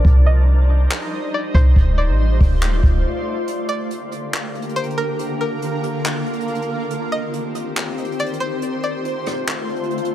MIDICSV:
0, 0, Header, 1, 5, 480
1, 0, Start_track
1, 0, Tempo, 428571
1, 53, Time_signature, 4, 2, 24, 8
1, 11365, End_track
2, 0, Start_track
2, 0, Title_t, "Synth pluck"
2, 0, Program_c, 0, 84
2, 296, Note_on_c, 0, 75, 77
2, 1450, Note_off_c, 0, 75, 0
2, 1504, Note_on_c, 0, 74, 82
2, 1727, Note_off_c, 0, 74, 0
2, 1732, Note_on_c, 0, 72, 81
2, 1960, Note_off_c, 0, 72, 0
2, 2216, Note_on_c, 0, 74, 67
2, 3370, Note_off_c, 0, 74, 0
2, 4130, Note_on_c, 0, 74, 87
2, 5287, Note_off_c, 0, 74, 0
2, 5333, Note_on_c, 0, 72, 94
2, 5561, Note_off_c, 0, 72, 0
2, 5574, Note_on_c, 0, 70, 92
2, 5802, Note_off_c, 0, 70, 0
2, 6057, Note_on_c, 0, 70, 72
2, 7690, Note_off_c, 0, 70, 0
2, 7975, Note_on_c, 0, 75, 80
2, 9130, Note_off_c, 0, 75, 0
2, 9182, Note_on_c, 0, 74, 90
2, 9406, Note_off_c, 0, 74, 0
2, 9412, Note_on_c, 0, 72, 85
2, 9641, Note_off_c, 0, 72, 0
2, 9896, Note_on_c, 0, 74, 69
2, 11050, Note_off_c, 0, 74, 0
2, 11365, End_track
3, 0, Start_track
3, 0, Title_t, "Ambient pad"
3, 0, Program_c, 1, 92
3, 51, Note_on_c, 1, 55, 83
3, 51, Note_on_c, 1, 72, 74
3, 52, Note_on_c, 1, 63, 78
3, 52, Note_on_c, 1, 75, 91
3, 1953, Note_off_c, 1, 55, 0
3, 1953, Note_off_c, 1, 63, 0
3, 1953, Note_off_c, 1, 75, 0
3, 1972, Note_on_c, 1, 65, 74
3, 1973, Note_on_c, 1, 57, 84
3, 1973, Note_on_c, 1, 74, 93
3, 3854, Note_off_c, 1, 72, 0
3, 3874, Note_off_c, 1, 57, 0
3, 3874, Note_off_c, 1, 65, 0
3, 3874, Note_off_c, 1, 74, 0
3, 3892, Note_on_c, 1, 50, 86
3, 3892, Note_on_c, 1, 67, 80
3, 3893, Note_on_c, 1, 58, 77
3, 3893, Note_on_c, 1, 70, 89
3, 5794, Note_off_c, 1, 58, 0
3, 5794, Note_off_c, 1, 67, 0
3, 5813, Note_on_c, 1, 65, 81
3, 5814, Note_on_c, 1, 58, 80
3, 7694, Note_off_c, 1, 50, 0
3, 7695, Note_off_c, 1, 70, 0
3, 7714, Note_off_c, 1, 65, 0
3, 7715, Note_off_c, 1, 58, 0
3, 7732, Note_on_c, 1, 67, 74
3, 7733, Note_on_c, 1, 51, 84
3, 7733, Note_on_c, 1, 60, 79
3, 7733, Note_on_c, 1, 72, 93
3, 9633, Note_off_c, 1, 67, 0
3, 9634, Note_off_c, 1, 51, 0
3, 9634, Note_off_c, 1, 60, 0
3, 9653, Note_on_c, 1, 57, 77
3, 9654, Note_on_c, 1, 50, 86
3, 9654, Note_on_c, 1, 65, 81
3, 11365, Note_off_c, 1, 50, 0
3, 11365, Note_off_c, 1, 57, 0
3, 11365, Note_off_c, 1, 65, 0
3, 11365, Note_off_c, 1, 72, 0
3, 11365, End_track
4, 0, Start_track
4, 0, Title_t, "808-style bass"
4, 0, Program_c, 2, 38
4, 53, Note_on_c, 2, 36, 109
4, 975, Note_off_c, 2, 36, 0
4, 1730, Note_on_c, 2, 36, 108
4, 1962, Note_off_c, 2, 36, 0
4, 1973, Note_on_c, 2, 26, 98
4, 2332, Note_on_c, 2, 33, 95
4, 2349, Note_off_c, 2, 26, 0
4, 2675, Note_off_c, 2, 33, 0
4, 2695, Note_on_c, 2, 26, 102
4, 3155, Note_off_c, 2, 26, 0
4, 3173, Note_on_c, 2, 26, 102
4, 3403, Note_off_c, 2, 26, 0
4, 11365, End_track
5, 0, Start_track
5, 0, Title_t, "Drums"
5, 53, Note_on_c, 9, 36, 101
5, 165, Note_off_c, 9, 36, 0
5, 1023, Note_on_c, 9, 39, 108
5, 1135, Note_off_c, 9, 39, 0
5, 1730, Note_on_c, 9, 36, 98
5, 1842, Note_off_c, 9, 36, 0
5, 1973, Note_on_c, 9, 36, 94
5, 2085, Note_off_c, 9, 36, 0
5, 2694, Note_on_c, 9, 46, 57
5, 2695, Note_on_c, 9, 36, 92
5, 2806, Note_off_c, 9, 46, 0
5, 2807, Note_off_c, 9, 36, 0
5, 2933, Note_on_c, 9, 44, 64
5, 2944, Note_on_c, 9, 39, 107
5, 3045, Note_off_c, 9, 44, 0
5, 3056, Note_off_c, 9, 39, 0
5, 3173, Note_on_c, 9, 36, 87
5, 3285, Note_off_c, 9, 36, 0
5, 3894, Note_on_c, 9, 42, 85
5, 4006, Note_off_c, 9, 42, 0
5, 4375, Note_on_c, 9, 42, 83
5, 4487, Note_off_c, 9, 42, 0
5, 4614, Note_on_c, 9, 42, 74
5, 4726, Note_off_c, 9, 42, 0
5, 4853, Note_on_c, 9, 42, 76
5, 4864, Note_on_c, 9, 39, 110
5, 4965, Note_off_c, 9, 42, 0
5, 4976, Note_off_c, 9, 39, 0
5, 5094, Note_on_c, 9, 42, 47
5, 5174, Note_off_c, 9, 42, 0
5, 5174, Note_on_c, 9, 42, 50
5, 5254, Note_off_c, 9, 42, 0
5, 5254, Note_on_c, 9, 42, 48
5, 5333, Note_off_c, 9, 42, 0
5, 5333, Note_on_c, 9, 42, 48
5, 5414, Note_off_c, 9, 42, 0
5, 5414, Note_on_c, 9, 42, 49
5, 5493, Note_off_c, 9, 42, 0
5, 5493, Note_on_c, 9, 42, 48
5, 5605, Note_off_c, 9, 42, 0
5, 5813, Note_on_c, 9, 42, 81
5, 5925, Note_off_c, 9, 42, 0
5, 6295, Note_on_c, 9, 42, 80
5, 6407, Note_off_c, 9, 42, 0
5, 6535, Note_on_c, 9, 42, 74
5, 6647, Note_off_c, 9, 42, 0
5, 6773, Note_on_c, 9, 42, 78
5, 6784, Note_on_c, 9, 39, 103
5, 6885, Note_off_c, 9, 42, 0
5, 6896, Note_off_c, 9, 39, 0
5, 7014, Note_on_c, 9, 42, 47
5, 7093, Note_off_c, 9, 42, 0
5, 7093, Note_on_c, 9, 42, 47
5, 7174, Note_off_c, 9, 42, 0
5, 7174, Note_on_c, 9, 42, 49
5, 7254, Note_off_c, 9, 42, 0
5, 7254, Note_on_c, 9, 42, 50
5, 7334, Note_off_c, 9, 42, 0
5, 7334, Note_on_c, 9, 42, 47
5, 7414, Note_off_c, 9, 42, 0
5, 7414, Note_on_c, 9, 42, 50
5, 7526, Note_off_c, 9, 42, 0
5, 7733, Note_on_c, 9, 42, 81
5, 7845, Note_off_c, 9, 42, 0
5, 8214, Note_on_c, 9, 42, 78
5, 8326, Note_off_c, 9, 42, 0
5, 8454, Note_on_c, 9, 42, 72
5, 8566, Note_off_c, 9, 42, 0
5, 8693, Note_on_c, 9, 42, 76
5, 8704, Note_on_c, 9, 39, 110
5, 8805, Note_off_c, 9, 42, 0
5, 8816, Note_off_c, 9, 39, 0
5, 8934, Note_on_c, 9, 42, 48
5, 9013, Note_off_c, 9, 42, 0
5, 9013, Note_on_c, 9, 42, 48
5, 9094, Note_off_c, 9, 42, 0
5, 9094, Note_on_c, 9, 42, 47
5, 9173, Note_off_c, 9, 42, 0
5, 9173, Note_on_c, 9, 42, 49
5, 9253, Note_off_c, 9, 42, 0
5, 9253, Note_on_c, 9, 42, 49
5, 9334, Note_off_c, 9, 42, 0
5, 9334, Note_on_c, 9, 42, 49
5, 9446, Note_off_c, 9, 42, 0
5, 9654, Note_on_c, 9, 42, 85
5, 9766, Note_off_c, 9, 42, 0
5, 10134, Note_on_c, 9, 42, 78
5, 10246, Note_off_c, 9, 42, 0
5, 10374, Note_on_c, 9, 42, 74
5, 10383, Note_on_c, 9, 37, 97
5, 10486, Note_off_c, 9, 42, 0
5, 10495, Note_off_c, 9, 37, 0
5, 10612, Note_on_c, 9, 42, 75
5, 10623, Note_on_c, 9, 39, 111
5, 10724, Note_off_c, 9, 42, 0
5, 10735, Note_off_c, 9, 39, 0
5, 10853, Note_on_c, 9, 42, 35
5, 10933, Note_off_c, 9, 42, 0
5, 10933, Note_on_c, 9, 42, 37
5, 11012, Note_off_c, 9, 42, 0
5, 11012, Note_on_c, 9, 42, 44
5, 11093, Note_off_c, 9, 42, 0
5, 11093, Note_on_c, 9, 42, 50
5, 11172, Note_off_c, 9, 42, 0
5, 11172, Note_on_c, 9, 42, 53
5, 11253, Note_off_c, 9, 42, 0
5, 11253, Note_on_c, 9, 42, 59
5, 11365, Note_off_c, 9, 42, 0
5, 11365, End_track
0, 0, End_of_file